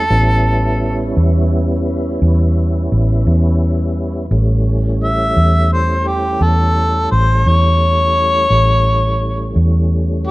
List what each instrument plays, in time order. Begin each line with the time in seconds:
Already playing: harmonica A4
0.10 fingered electric bass A1, tonewheel organ G3 B3 C#4 E4
1.17 fingered electric bass E2
2.22 fingered electric bass E2
2.92 fingered electric bass A1
3.27 fingered electric bass E2
4.31 fingered electric bass A1, tonewheel organ E3 G3 A3 C#4
5.04 harmonica E5
5.37 fingered electric bass E2
5.73 harmonica C5
6.07 harmonica G4
6.41 fingered electric bass E2, harmonica A4
7.11 fingered electric bass A1, harmonica C5
7.46 fingered electric bass E2, harmonica C#5
8.49 fingered electric bass A1, tonewheel organ E3 G3 A3 C#4
9.56 fingered electric bass E2
10.28 harmonica G4